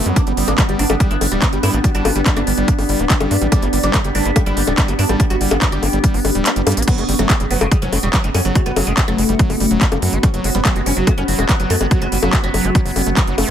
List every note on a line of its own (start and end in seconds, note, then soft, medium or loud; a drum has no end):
0.00 6.86 B3 medium
0.00 0.16 C#4 medium
0.00 0.16 F#4 medium
0.00 0.16 F#5 medium
0.06 0.12 F#2 medium
0.06 0.18 F#3 loud
0.06 closed hi-hat soft
0.16 0.22 B3 loud
0.16 0.23 B3 medium
0.16 0.22 D4 loud
0.16 6.88 D4 medium
0.16 kick loud
0.16 closed hi-hat medium
0.27 0.33 G1 medium
0.27 0.32 G3 medium
0.27 0.34 B3 medium
0.27 closed hi-hat soft
0.37 0.43 G1 loud
0.37 0.49 G3 loud
0.37 0.43 G3 medium
0.37 open hi-hat loud
0.48 0.54 G1 medium
0.48 0.53 B3 loud
0.48 0.54 C#4 medium
0.48 0.53 D4 medium
0.48 closed hi-hat soft
0.48 high bongo soft
0.58 0.64 G3 medium
0.58 kick loud
0.58 clap loud
0.58 closed hi-hat medium
0.69 0.75 G1 medium
0.69 0.81 G3 medium
0.69 0.74 G3 medium
0.69 closed hi-hat soft
0.74 6.88 G4 medium
0.79 0.85 G1 loud
0.79 0.85 B3 loud
0.79 0.85 D4 medium
0.79 open hi-hat loud
0.90 0.96 G1 loud
0.90 0.95 G3 medium
0.90 closed hi-hat soft
0.90 high bongo medium
1.00 1.12 G3 loud
1.00 1.06 G3 medium
1.00 kick loud
1.00 closed hi-hat medium
1.11 1.17 G1 medium
1.11 1.16 B3 loud
1.11 1.16 E4 medium
1.11 6.88 D5 medium
1.11 closed hi-hat soft
1.21 1.27 G1 loud
1.21 1.27 G3 medium
1.21 open hi-hat loud
1.21 high bongo soft
1.32 1.38 D1 medium
1.32 1.44 G3 loud
1.32 1.37 G3 medium
1.32 closed hi-hat soft
1.42 1.48 B3 medium
1.42 kick loud
1.42 clap loud
1.42 closed hi-hat medium
1.53 1.59 G1 medium
1.53 1.58 G3 medium
1.53 closed hi-hat soft
1.63 1.69 G2 loud
1.63 1.75 G3 loud
1.63 1.69 E4 loud
1.63 open hi-hat loud
1.63 high bongo soft
1.74 1.80 A1 medium
1.74 1.79 G3 medium
1.74 1.79 B3 loud
1.74 closed hi-hat soft
1.84 1.90 G3 medium
1.84 2.16 F#4 medium
1.84 kick loud
1.84 closed hi-hat loud
1.95 2.01 G1 medium
1.95 2.07 G3 loud
1.95 2.00 D4 medium
1.95 closed hi-hat soft
2.05 2.11 G1 loud
2.05 2.11 G3 medium
2.05 2.11 B3 loud
2.05 open hi-hat loud
2.05 high bongo medium
2.16 2.22 G1 medium
2.16 2.21 G3 medium
2.16 closed hi-hat soft
2.26 2.38 G3 loud
2.26 kick loud
2.26 clap loud
2.26 closed hi-hat medium
2.37 2.43 G1 medium
2.37 2.42 B3 loud
2.37 3.44 D4 medium
2.37 closed hi-hat soft
2.37 high bongo soft
2.47 2.53 G1 loud
2.47 2.53 G3 medium
2.47 open hi-hat loud
2.58 2.64 G1 medium
2.58 2.70 G3 loud
2.58 closed hi-hat soft
2.68 2.74 B3 loud
2.68 kick loud
2.68 closed hi-hat medium
2.79 2.85 G1 medium
2.79 2.84 G3 medium
2.79 open hi-hat medium
2.79 high bongo soft
2.89 2.95 G1 loud
2.89 3.01 G3 loud
2.89 open hi-hat loud
2.99 3.06 D1 loud
2.99 3.05 B3 loud
2.99 closed hi-hat soft
3.10 3.16 G3 medium
3.10 kick loud
3.10 clap loud
3.10 closed hi-hat medium
3.20 3.27 G1 medium
3.20 3.32 G3 loud
3.20 closed hi-hat soft
3.20 high bongo medium
3.31 3.37 G2 loud
3.31 3.37 B3 loud
3.31 open hi-hat loud
3.41 3.48 A1 loud
3.41 3.47 G3 medium
3.41 closed hi-hat soft
3.52 3.64 G3 loud
3.52 3.59 B3 medium
3.52 3.58 D4 loud
3.52 kick loud
3.52 closed hi-hat loud
3.52 high bongo soft
3.62 3.69 G1 medium
3.62 3.68 G3 medium
3.62 3.68 B3 loud
3.62 3.69 B3 medium
3.62 closed hi-hat soft
3.73 3.79 G1 loud
3.73 3.79 G3 medium
3.73 open hi-hat loud
3.83 3.89 G1 loud
3.83 3.95 G3 loud
3.83 3.89 D4 medium
3.83 closed hi-hat soft
3.94 3.99 G3 medium
3.94 4.00 B3 loud
3.94 kick loud
3.94 clap loud
3.94 closed hi-hat loud
3.94 high bongo soft
4.04 4.10 G1 medium
4.04 4.10 G3 medium
4.04 closed hi-hat soft
4.15 4.21 G1 loud
4.15 4.27 G3 loud
4.15 4.22 A3 medium
4.15 4.20 D4 loud
4.15 open hi-hat loud
4.25 4.31 G1 medium
4.25 4.31 G3 medium
4.25 4.32 A3 medium
4.25 4.31 B3 loud
4.25 closed hi-hat soft
4.36 4.41 G3 medium
4.36 4.42 G3 medium
4.36 kick loud
4.36 closed hi-hat loud
4.36 high bongo medium
4.46 4.52 G1 medium
4.46 4.58 G3 loud
4.46 4.52 E4 medium
4.46 closed hi-hat soft
4.57 4.63 G1 loud
4.57 4.62 G3 medium
4.57 4.63 B3 loud
4.57 open hi-hat loud
4.67 4.73 D1 medium
4.67 4.73 G3 medium
4.67 closed hi-hat soft
4.67 high bongo soft
4.78 4.90 G3 loud
4.78 kick loud
4.78 clap loud
4.78 closed hi-hat medium
4.88 4.94 G1 medium
4.88 4.94 G3 medium
4.88 4.94 B3 loud
4.88 closed hi-hat soft
4.99 5.05 G2 loud
4.99 5.05 G3 medium
4.99 5.04 D4 loud
4.99 open hi-hat loud
5.09 5.15 A1 medium
5.09 5.15 G3 medium
5.09 5.21 G3 loud
5.09 closed hi-hat soft
5.09 high bongo soft
5.20 5.25 G3 medium
5.20 5.26 B3 loud
5.20 5.27 B3 medium
5.20 kick loud
5.20 closed hi-hat loud
5.30 5.36 G1 medium
5.30 5.36 G3 medium
5.30 5.37 B3 medium
5.30 5.36 F#4 loud
5.30 closed hi-hat soft
5.41 5.47 G1 loud
5.41 5.46 G3 medium
5.41 5.53 G3 loud
5.41 open hi-hat loud
5.51 5.57 G1 loud
5.51 5.57 G3 medium
5.51 5.57 B3 loud
5.51 closed hi-hat soft
5.51 high bongo medium
5.62 5.67 G3 medium
5.62 5.68 G3 medium
5.62 kick loud
5.62 clap loud
5.62 closed hi-hat loud
5.72 5.78 G1 medium
5.72 5.84 G3 loud
5.72 6.79 G4 medium
5.72 closed hi-hat soft
5.83 5.89 G1 loud
5.83 5.88 B3 loud
5.83 5.89 B3 medium
5.83 open hi-hat loud
5.83 high bongo soft
5.93 5.99 G1 medium
5.93 5.99 G3 medium
5.93 6.00 B3 medium
5.93 closed hi-hat soft
6.04 6.16 G3 loud
6.04 kick loud
6.04 closed hi-hat loud
6.14 6.20 G1 medium
6.14 6.20 B3 loud
6.14 open hi-hat medium
6.25 6.31 G1 loud
6.25 6.30 G3 medium
6.25 open hi-hat loud
6.25 high bongo soft
6.35 6.41 D1 medium
6.35 6.47 G3 loud
6.35 closed hi-hat soft
6.46 6.51 B3 loud
6.46 clap loud
6.46 closed hi-hat medium
6.56 6.62 G1 medium
6.56 6.62 G3 medium
6.56 closed hi-hat soft
6.67 6.73 G2 loud
6.67 6.79 G3 loud
6.67 closed hi-hat medium
6.67 open hi-hat loud
6.67 high bongo medium
6.72 closed hi-hat medium
6.77 6.83 A1 medium
6.77 6.83 B3 loud
6.77 closed hi-hat medium
6.82 closed hi-hat medium
6.88 7.00 F#3 loud
6.88 13.51 B3 medium
6.88 6.93 B3 loud
6.88 6.94 B3 medium
6.88 13.51 C#4 medium
6.88 kick loud
6.88 closed hi-hat loud
6.88 crash medium
6.98 7.04 F#1 medium
6.98 7.04 C#3 medium
6.98 7.04 A3 loud
6.98 7.05 B3 medium
6.98 closed hi-hat soft
7.09 7.15 F#1 loud
7.09 7.14 C#3 medium
7.09 7.14 G3 medium
7.09 13.51 F#5 medium
7.09 open hi-hat loud
7.19 7.25 F#1 medium
7.19 7.31 F#3 loud
7.19 7.25 A3 loud
7.19 7.26 C#4 medium
7.19 closed hi-hat soft
7.19 high bongo soft
7.30 7.35 C#3 medium
7.30 7.35 A3 loud
7.30 7.36 C#4 medium
7.30 kick loud
7.30 clap loud
7.30 closed hi-hat loud
7.40 7.46 F#1 medium
7.40 7.46 C#3 medium
7.40 7.46 G3 medium
7.40 closed hi-hat soft
7.46 13.51 F#4 medium
7.51 7.57 F#1 loud
7.51 7.63 F#3 loud
7.51 7.56 B3 medium
7.51 open hi-hat loud
7.61 7.67 F#1 medium
7.61 7.67 C#3 medium
7.61 7.67 A3 loud
7.61 closed hi-hat soft
7.61 high bongo medium
7.71 7.77 C#3 medium
7.71 7.77 G3 medium
7.71 kick loud
7.71 closed hi-hat loud
7.82 7.88 F#1 medium
7.82 7.94 F#3 loud
7.82 7.88 C#4 medium
7.82 closed hi-hat soft
7.93 7.99 F#1 loud
7.93 7.98 C#3 medium
7.93 7.98 A3 loud
7.93 open hi-hat loud
7.93 high bongo soft
8.03 8.09 E1 loud
8.03 8.09 C#3 medium
8.03 8.09 G3 medium
8.03 closed hi-hat soft
8.13 8.26 F#3 loud
8.13 kick loud
8.13 clap loud
8.13 closed hi-hat loud
8.24 8.30 F#1 medium
8.24 8.30 C#3 medium
8.24 8.30 A3 loud
8.24 closed hi-hat soft
8.34 8.41 F#2 loud
8.34 8.40 G3 medium
8.34 8.40 C#4 loud
8.34 open hi-hat loud
8.34 high bongo soft
8.45 8.51 G1 medium
8.45 8.51 C#3 medium
8.45 8.57 F#3 loud
8.45 closed hi-hat soft
8.55 8.61 C#3 medium
8.55 8.61 A3 loud
8.55 8.87 F#4 medium
8.55 kick loud
8.55 closed hi-hat loud
8.66 8.72 F#1 medium
8.66 8.72 G3 medium
8.66 8.71 B3 medium
8.66 closed hi-hat soft
8.76 8.83 F#1 loud
8.76 8.82 C#3 medium
8.76 8.88 F#3 loud
8.76 open hi-hat loud
8.76 high bongo medium
8.87 8.93 F#1 loud
8.87 8.92 C#3 medium
8.87 8.93 A3 loud
8.87 closed hi-hat soft
8.97 9.03 C#3 medium
8.97 9.03 G3 medium
8.97 kick loud
8.97 clap loud
8.97 closed hi-hat loud
9.08 9.14 F#1 medium
9.08 9.20 F#3 loud
9.08 10.15 A3 medium
9.08 closed hi-hat soft
9.08 high bongo soft
9.18 9.24 F#1 loud
9.18 9.24 A3 loud
9.18 open hi-hat loud
9.29 9.35 F#1 medium
9.29 9.35 G3 medium
9.29 closed hi-hat soft
9.39 9.51 F#3 loud
9.39 kick loud
9.39 closed hi-hat loud
9.50 9.56 F#1 medium
9.50 9.56 A3 loud
9.50 open hi-hat medium
9.50 high bongo soft
9.60 9.66 F#1 loud
9.60 9.66 G3 medium
9.60 open hi-hat loud
9.71 9.77 E1 medium
9.71 9.83 F#3 loud
9.71 closed hi-hat soft
9.81 9.87 A3 loud
9.81 kick loud
9.81 clap loud
9.81 closed hi-hat medium
9.92 9.98 F#1 medium
9.92 9.98 G3 medium
9.92 closed hi-hat soft
9.92 high bongo medium
10.02 10.08 F#2 loud
10.02 10.14 F#3 loud
10.02 open hi-hat loud
10.13 10.19 G1 medium
10.13 10.19 A3 loud
10.13 closed hi-hat soft
10.23 10.29 G3 medium
10.23 10.30 B3 medium
10.23 10.29 C#4 loud
10.23 kick loud
10.23 closed hi-hat medium
10.23 high bongo soft
10.34 10.40 F#1 medium
10.34 10.46 F#3 loud
10.34 10.39 F#3 medium
10.34 10.40 B3 medium
10.34 closed hi-hat soft
10.44 10.50 F#1 loud
10.44 10.50 F#3 medium
10.44 10.50 A3 loud
10.44 open hi-hat loud
10.55 10.61 F#1 medium
10.55 10.60 G3 medium
10.55 10.60 B3 loud
10.55 closed hi-hat soft
10.65 10.71 F#3 medium
10.65 10.77 F#3 loud
10.65 kick loud
10.65 clap loud
10.65 closed hi-hat medium
10.65 high bongo soft
10.76 10.82 F#1 medium
10.76 10.81 F#3 medium
10.76 10.81 A3 loud
10.76 closed hi-hat soft
10.86 10.92 F#1 loud
10.86 10.92 G3 medium
10.86 10.93 A3 medium
10.86 10.92 C#4 medium
10.86 open hi-hat loud
10.97 11.03 F#1 medium
10.97 11.09 F#3 loud
10.97 11.02 F#3 medium
10.97 11.03 A3 medium
10.97 closed hi-hat soft
11.07 11.13 F#3 medium
11.07 11.13 A3 loud
11.07 kick loud
11.07 closed hi-hat medium
11.07 high bongo medium
11.18 11.24 F#1 medium
11.18 11.23 G3 medium
11.18 11.23 C#4 medium
11.18 closed hi-hat soft
11.28 11.34 F#1 loud
11.28 11.34 F#3 medium
11.28 11.40 F#3 loud
11.28 open hi-hat loud
11.39 11.45 E1 medium
11.39 11.44 F#3 medium
11.39 11.44 A3 loud
11.39 closed hi-hat soft
11.39 high bongo soft
11.49 11.55 G3 medium
11.49 kick loud
11.49 clap loud
11.49 closed hi-hat medium
11.60 11.66 F#1 medium
11.60 11.72 F#3 loud
11.60 11.65 F#3 medium
11.60 closed hi-hat soft
11.70 11.76 F#2 loud
11.70 11.76 A3 loud
11.70 open hi-hat loud
11.81 11.87 G1 medium
11.81 11.86 F#3 medium
11.81 11.86 G3 medium
11.81 closed hi-hat soft
11.81 high bongo soft
11.91 12.03 F#3 loud
11.91 11.97 F#3 medium
11.91 11.98 B3 medium
11.91 kick loud
11.91 closed hi-hat medium
12.02 12.08 F#1 medium
12.02 12.07 F#3 medium
12.02 12.07 A3 loud
12.02 12.08 B3 medium
12.02 closed hi-hat soft
12.12 12.18 F#1 loud
12.12 12.18 F#3 medium
12.12 12.18 G3 medium
12.12 open hi-hat loud
12.23 12.29 F#1 medium
12.23 12.35 F#3 loud
12.23 12.28 F#3 medium
12.23 closed hi-hat soft
12.23 high bongo medium
12.33 12.39 F#3 medium
12.33 12.39 A3 loud
12.33 kick loud
12.33 clap loud
12.33 closed hi-hat medium
12.44 12.50 F#1 medium
12.44 13.51 F#3 medium
12.44 12.49 G3 medium
12.44 closed hi-hat soft
12.54 12.60 F#1 loud
12.54 12.66 F#3 loud
12.54 12.61 B3 medium
12.54 open hi-hat loud
12.54 high bongo soft
12.65 12.71 F#1 loud
12.65 12.70 A3 loud
12.65 12.71 B3 medium
12.65 closed hi-hat soft
12.75 12.81 G3 medium
12.75 kick loud
12.75 closed hi-hat medium
12.86 12.92 F#1 medium
12.86 12.91 F#3 loud
12.86 open hi-hat medium
12.96 13.02 F#1 loud
12.96 13.02 G3 medium
12.96 open hi-hat loud
12.96 high bongo soft
13.06 13.13 F#1 medium
13.06 13.10 A3 medium
13.06 closed hi-hat soft
13.17 13.20 F#3 medium
13.17 kick loud
13.17 clap loud
13.17 closed hi-hat medium
13.27 13.34 F#1 medium
13.27 13.36 F#3 loud
13.27 closed hi-hat soft
13.38 13.44 F#1 loud
13.38 13.50 A3 loud
13.38 open hi-hat loud
13.38 high bongo medium